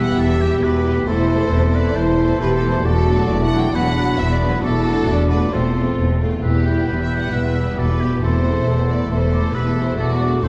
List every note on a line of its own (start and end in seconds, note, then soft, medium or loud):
0.00 0.13 E1 medium
0.00 0.13 E2 medium
0.00 0.88 E2 medium
0.00 0.40 E3 soft
0.00 1.02 G3 soft
0.00 0.39 B3 medium
0.00 0.20 E4 medium
0.00 0.39 E4 soft
0.00 0.97 E4 soft
0.00 0.38 G4 soft
0.00 1.05 G4 medium
0.00 0.14 B4 medium
0.00 1.07 B4 soft
0.00 0.18 F#5 medium
0.00 0.59 E6 medium
0.18 0.57 E1 medium
0.18 0.57 E2 medium
0.18 0.63 G4 medium
0.18 0.43 A4 medium
0.18 0.63 E5 medium
0.40 0.84 E3 soft
0.40 0.84 B3 soft
0.40 0.84 E4 soft
0.40 0.84 G4 soft
0.40 0.65 G4 medium
0.61 1.01 E1 medium
0.61 1.02 E2 medium
0.61 0.83 F#4 medium
0.61 1.07 B4 medium
0.61 1.08 B4 medium
0.61 1.09 D6 soft
0.83 1.06 E3 soft
0.83 1.07 B3 soft
0.83 0.94 E4 medium
0.83 1.05 E4 soft
0.83 1.07 G4 soft
0.89 2.66 E2 soft
0.94 2.70 A3 soft
0.98 2.82 E4 soft
1.03 1.46 E1 medium
1.03 1.46 E2 medium
1.03 1.28 E3 soft
1.03 1.53 E4 medium
1.03 1.28 E4 soft
1.03 1.28 A4 soft
1.03 2.84 C5 soft
1.03 1.72 C5 medium
1.07 1.29 A3 soft
1.07 1.52 E4 medium
1.07 1.51 A4 medium
1.07 1.97 C6 medium
1.29 1.72 E3 soft
1.29 1.72 A3 soft
1.29 1.71 E4 medium
1.29 1.71 A4 soft
1.51 1.91 E1 medium
1.51 1.91 E2 medium
1.51 1.95 C4 medium
1.51 2.42 A4 medium
1.51 1.76 A4 medium
1.72 2.17 E3 soft
1.72 2.16 A3 soft
1.72 2.16 E4 soft
1.72 2.17 A4 soft
1.72 1.98 B4 medium
1.72 1.96 D5 medium
1.96 2.35 E1 medium
1.96 2.35 E2 medium
1.96 2.39 E4 medium
1.96 2.40 C5 medium
1.96 2.41 C5 medium
1.96 3.29 A5 medium
2.17 2.61 E3 soft
2.17 2.61 A3 soft
2.17 2.61 E4 soft
2.17 2.61 A4 soft
2.40 2.80 E1 medium
2.40 2.80 E2 medium
2.40 2.84 G4 medium
2.40 2.56 B4 medium
2.40 2.86 C5 medium
2.56 2.70 A4 medium
2.62 2.84 E3 medium
2.62 2.85 A3 soft
2.62 2.84 E4 soft
2.62 2.84 A4 soft
2.67 3.54 E2 medium
2.67 2.85 C5 medium
2.72 3.69 A3 soft
2.76 3.64 F#4 soft
2.81 3.24 E1 medium
2.81 3.68 D5 soft
2.85 3.24 E2 medium
2.85 3.28 F#4 medium
2.85 3.29 F#4 medium
2.85 3.29 A4 medium
2.85 3.77 D5 medium
3.07 3.51 F#3 medium
3.07 3.51 A3 medium
3.07 3.50 D4 medium
3.07 3.50 F#4 medium
3.29 3.69 E1 medium
3.29 3.69 E2 medium
3.29 3.74 E4 medium
3.29 3.74 F#4 medium
3.29 3.45 D5 medium
3.29 3.73 A5 medium
3.45 3.59 F#5 medium
3.51 3.73 F#3 medium
3.51 3.74 A3 soft
3.51 3.73 D4 medium
3.51 3.73 F#4 soft
3.56 4.44 E2 medium
3.60 4.58 B3 soft
3.60 3.75 G5 medium
3.65 4.53 F#4 soft
3.69 3.97 E4 medium
3.69 4.58 D5 soft
3.73 4.14 E1 medium
3.73 4.14 E2 medium
3.73 3.96 F#3 medium
3.73 3.96 B3 medium
3.73 4.17 D4 medium
3.73 3.96 D4 soft
3.73 3.96 F#4 medium
3.73 4.63 B4 medium
3.73 4.18 F#5 medium
3.73 4.61 B5 medium
3.95 4.40 F#3 medium
3.95 4.41 B3 soft
3.95 4.17 D4 medium
3.95 4.39 D4 medium
3.95 4.39 F#4 medium
4.18 4.58 E1 medium
4.18 4.58 E2 medium
4.18 4.63 B3 medium
4.18 4.63 E4 medium
4.18 4.33 E5 medium
4.34 4.49 D5 medium
4.40 4.63 F#3 medium
4.40 4.63 B3 medium
4.40 4.62 D4 medium
4.40 4.63 F#4 soft
4.45 5.34 E2 medium
4.50 5.38 A3 soft
4.50 4.64 B4 medium
4.54 5.50 F#4 soft
4.59 4.84 F#4 medium
4.59 5.52 D5 soft
4.63 5.02 E1 medium
4.63 5.03 E2 medium
4.63 5.08 E4 medium
4.63 5.29 A4 medium
4.63 5.07 A4 medium
4.63 5.54 D6 medium
4.85 5.29 F#3 medium
4.85 5.29 A3 medium
4.85 5.29 D4 medium
4.85 5.28 F#4 medium
4.85 5.54 F#4 medium
5.07 5.47 E1 medium
5.07 5.48 E2 medium
5.07 5.53 D4 medium
5.07 5.29 D5 medium
5.29 5.53 F#3 soft
5.29 5.52 A3 soft
5.29 5.52 D4 soft
5.29 5.52 F#4 soft
5.29 5.52 B4 medium
5.29 5.55 D5 medium
5.35 6.24 E2 soft
5.39 6.38 A3 soft
5.44 6.40 F4 soft
5.49 5.73 C4 soft
5.49 5.73 F4 soft
5.49 6.20 F4 medium
5.49 6.43 C5 soft
5.49 5.98 C5 medium
5.53 5.93 E1 medium
5.53 5.93 E2 medium
5.53 5.75 A3 soft
5.53 6.21 C4 medium
5.53 6.21 A4 soft
5.53 6.21 C6 soft
5.74 6.20 A3 soft
5.74 6.19 C4 soft
5.74 6.19 F4 soft
5.97 6.37 E1 soft
5.97 6.38 E2 soft
6.21 6.43 A3 soft
6.21 6.42 C4 soft
6.21 6.43 F4 soft
6.25 8.03 E2 soft
6.29 8.17 B3 soft
6.34 8.12 E4 soft
6.38 6.82 E1 soft
6.38 8.16 E5 soft
6.43 6.83 E2 medium
6.43 7.73 E4 soft
6.43 6.84 E4 soft
6.43 6.85 G4 medium
6.43 7.80 B4 soft
6.43 6.64 E6 soft
6.64 7.09 G3 soft
6.64 7.09 B3 soft
6.64 7.08 E4 soft
6.64 7.08 G4 soft
6.64 6.87 G6 soft
6.86 7.27 E1 soft
6.86 7.27 E2 soft
6.86 7.33 G4 medium
6.86 7.02 B4 medium
6.86 7.34 G6 soft
7.03 7.17 E5 medium
7.11 7.54 G3 soft
7.11 7.54 B3 soft
7.11 7.53 E4 soft
7.11 7.52 G4 soft
7.18 7.32 F#5 medium
7.32 7.72 E1 soft
7.32 7.72 E2 soft
7.32 8.22 B3 medium
7.32 7.77 E5 medium
7.32 7.57 F#6 soft
7.53 7.99 G3 soft
7.53 7.99 B3 soft
7.53 7.97 E4 soft
7.53 7.97 G4 soft
7.53 7.79 E6 soft
7.77 8.16 E1 soft
7.77 8.16 E2 soft
7.77 8.21 F#4 soft
7.77 8.02 A4 soft
7.77 8.22 B4 medium
7.77 8.22 D6 soft
7.98 8.21 G3 soft
7.98 8.22 B3 soft
7.98 8.20 E4 soft
7.98 8.21 G4 soft
7.98 8.22 G4 soft
8.04 9.79 E2 soft
8.08 9.84 A3 soft
8.13 9.96 E4 soft
8.17 8.61 E1 soft
8.17 8.43 A4 soft
8.17 9.99 E5 soft
8.21 8.61 E2 medium
8.21 8.44 E3 soft
8.21 8.43 A3 soft
8.21 8.66 C4 soft
8.21 8.43 E4 soft
8.21 8.44 E4 soft
8.21 8.66 A4 soft
8.21 8.88 C5 medium
8.21 9.09 C6 soft
8.44 8.87 E3 soft
8.44 8.87 A3 soft
8.44 8.66 E4 soft
8.44 8.87 E4 soft
8.44 8.88 A4 soft
8.66 9.05 E1 soft
8.66 9.05 E2 soft
8.66 9.10 B3 soft
8.66 9.56 A4 soft
8.88 9.31 E3 soft
8.88 9.31 A3 soft
8.88 9.32 E4 soft
8.88 9.32 A4 soft
8.88 9.11 D5 medium
9.10 9.49 E1 soft
9.10 9.49 E2 medium
9.10 10.41 A3 medium
9.10 9.55 C5 medium
9.10 9.17 C6 soft
9.33 9.76 E3 soft
9.33 9.76 A3 soft
9.33 9.76 E4 soft
9.33 9.77 A4 soft
9.33 9.56 D6 medium
9.54 9.93 E1 medium
9.54 9.94 E2 medium
9.54 9.98 G4 soft
9.54 9.69 B4 medium
9.54 9.99 B4 soft
9.54 9.99 E6 soft
9.68 9.84 A4 medium
9.78 10.48 E2 soft
9.78 9.99 E3 soft
9.78 9.99 A3 soft
9.78 9.99 E4 soft
9.78 9.99 A4 soft
9.83 10.48 A3 soft
9.83 9.98 C5 medium
9.89 10.48 F#4 soft
9.94 10.38 E1 medium
9.94 10.48 D5 soft
9.99 10.38 E2 medium
9.99 10.42 F#4 medium
9.99 10.44 F#4 soft
9.99 10.10 A4 soft
9.99 10.45 D6 soft
10.21 10.48 F#3 soft
10.21 10.48 A3 soft
10.21 10.48 D4 soft
10.21 10.48 F#4 soft
10.21 10.31 D5 medium
10.43 10.48 E1 medium
10.43 10.48 E2 medium
10.43 10.48 C4 medium
10.43 10.48 E4 medium
10.43 10.48 A4 medium
10.43 10.48 C5 medium
10.43 10.48 C6 medium